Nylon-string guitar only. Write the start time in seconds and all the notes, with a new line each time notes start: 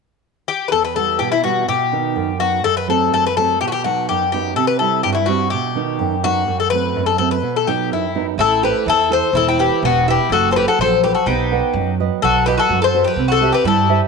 0.71 E2
0.95 E3 G3 B3
1.20 B2
1.43 E3 G3 B3
1.68 B2
1.92 D#3 B3 D#4
2.16 F#2
2.39 F#3 B3 D#4
2.64 F#2
2.88 F#3 A3 C4
3.13 F#2
3.37 F#3 A3 C4
3.61 B2
3.84 F#3 B3 D#4
4.10 F#2
4.33 F#3 B3 D#4
4.56 C3
4.80 G3 C4 E4
5.04 G2
5.28 G3 C4 E4
5.53 B2
5.75 D#3 B3 D#4
5.99 F#2
6.23 F#3 B3 D#4
6.48 F#2
6.72 F#3 A3 C4
6.96 F#2
7.18 F#3 A3 C4
7.43 B2
7.67 F#3 B3 D#4
7.92 F#2
8.15 F#3 B3 D#4
8.39 A3
8.63 E4 A4 C5
8.86 E3
9.10 E4 A4 C5
9.34 E3
9.58 E4 G4 B4
9.83 B2
10.07 E4 G4 B4
10.32 F#3
10.55 F#4 A4 C5
10.80 F#3
11.03 F#4 A4 C5
11.28 B3
11.52 B4 D#5 F#5
11.76 F#3
12.00 F#4 B4 D#5
12.23 F#3
12.47 F#4 B4 D#5
12.71 F#3
12.94 F#4 B4 D#5
13.17 C4
13.41 G4 C5 E5
13.65 G3
13.88 G4 C5 E5